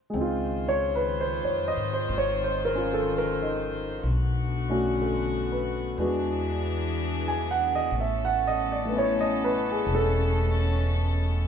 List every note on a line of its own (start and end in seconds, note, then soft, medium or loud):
0.10 1.40 C#2 medium
0.10 4.02 G#3 medium
0.14 4.01 D#3 medium
0.14 4.04 C4 soft
0.14 3.41 D#4 soft
0.14 4.01 F4 medium
0.14 4.01 C5 medium
0.21 2.76 F4 medium
0.68 0.89 C#5 medium
0.95 1.11 B4 medium
1.21 1.48 C5 medium
1.44 1.74 F2 medium
1.44 1.76 C#5 medium
1.68 1.88 D#5 medium
1.77 2.07 G#2 medium
1.93 2.08 C5 medium
2.09 4.00 G#1 medium
2.18 2.45 C#5 medium
2.44 2.75 C5 medium
2.65 2.85 A#4 medium
2.75 4.04 C#4 soft
2.75 4.05 F4 soft
2.94 3.07 A4 medium
3.18 3.44 A#4 medium
3.42 3.61 D#4 medium
4.03 5.94 B1 medium
4.03 5.96 D3 medium
4.03 5.96 A3 medium
4.03 5.96 B3 medium
4.03 5.96 F#4 medium
4.70 5.98 A3 soft
4.70 5.98 C#4 soft
4.70 5.98 D4 soft
4.70 5.99 F#4 medium
5.02 5.79 A4 soft
5.52 6.19 B4 soft
5.98 7.88 E2 medium
5.98 7.90 E3 medium
5.98 7.92 G#3 soft
5.98 11.48 B3 medium
5.98 7.93 B3 soft
5.98 7.90 D4 medium
5.98 7.93 D4 soft
5.98 7.93 F#4 medium
5.98 7.90 G#4 medium
7.28 7.59 G#5 medium
7.51 7.71 F#5 medium
7.75 7.91 D#5 medium
7.92 9.82 A1 medium
7.92 11.48 A3 medium
7.92 11.48 C#4 medium
7.92 11.48 A4 medium
8.00 8.28 E5 medium
8.25 8.56 F#5 medium
8.47 8.67 D#5 medium
8.72 8.88 D5 medium
8.85 11.48 A3 soft
8.85 11.48 B3 soft
8.92 11.48 C#4 soft
8.96 11.48 E4 soft
8.96 9.26 C#5 medium
9.21 9.53 D#5 medium
9.44 9.64 B4 medium
9.71 9.86 G#4 medium
9.86 11.48 E1 medium
9.95 10.31 A4 medium